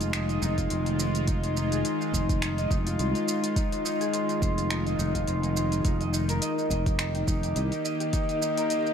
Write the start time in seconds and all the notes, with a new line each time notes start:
Already playing: F1 D#3 G#3 D#4 F4 G#4 C5
0.01 F4, closed hi-hat, shaker
0.13 D#4, finger snap, closed hi-hat, shaker
0.29 D#5, closed hi-hat, shaker
0.42 F1 D#4, shaker
0.58 F4, kick, closed hi-hat, shaker
0.70 F1 C5, closed hi-hat, shaker
0.86 D#4, closed hi-hat, shaker
0.99 C5, shaker
1.15 F4, closed hi-hat, shaker
1.27 D#4, kick, closed hi-hat, shaker
1.44 C5, closed hi-hat, shaker
1.56 D#4, shaker
1.72 G#4, closed hi-hat, shaker
1.85 C5, closed hi-hat, shaker
2.01 D#4, shaker
2.13 F1 C5, kick, shaker
2.29 F4, kick, closed hi-hat, shaker
2.42 D#4, finger snap, closed hi-hat, shaker
2.58 D#5, closed hi-hat, shaker
2.70 F1 D#4, kick, shaker
2.86 F4, closed hi-hat, shaker
2.99 C2 C5, closed hi-hat, shaker
3.15 D#4, closed hi-hat, shaker
3.27 C5, shaker
3.43 F4, closed hi-hat, shaker
3.56 D#4, kick, closed hi-hat, shaker
3.72 C5, closed hi-hat, shaker
3.85 D#4, shaker
4.01 G#4, closed hi-hat, shaker
4.13 C5, closed hi-hat, shaker
4.29 D#4, closed hi-hat, shaker
4.42 F1 C5, kick, shaker
4.58 F4, closed hi-hat, shaker
4.70 D#4, finger snap, closed hi-hat, shaker
4.86 D#5, closed hi-hat, shaker
4.99 F1 D#4, shaker
5.15 F4, kick, closed hi-hat, shaker
5.27 F1 C5, closed hi-hat, shaker
5.43 D#4, closed hi-hat, shaker
5.56 C5, shaker
5.72 F4, closed hi-hat, shaker
5.85 F1 A#3 D#4 G4, kick, closed hi-hat, shaker
6.01 D#5, closed hi-hat, shaker
6.13 D#4, shaker
6.29 A#4, closed hi-hat, shaker
6.42 D#5, closed hi-hat, shaker
6.58 D#4, shaker
6.70 F1 D#5, kick, shaker
6.86 G4, kick, closed hi-hat, shaker
6.99 D#4, finger snap, closed hi-hat, shaker
7.15 G5, closed hi-hat, shaker
7.27 F1 D#4, kick, shaker
7.43 G4, closed hi-hat, shaker
7.56 C2 D#5, closed hi-hat, shaker
7.72 D#4, closed hi-hat, shaker
7.84 D#5, shaker
8.00 G4, closed hi-hat, shaker
8.13 D#4, kick, closed hi-hat, shaker
8.29 D#5, closed hi-hat, shaker
8.42 D#4, shaker
8.57 A#4, closed hi-hat, shaker
8.70 D#5, closed hi-hat, shaker
8.86 D#4, shaker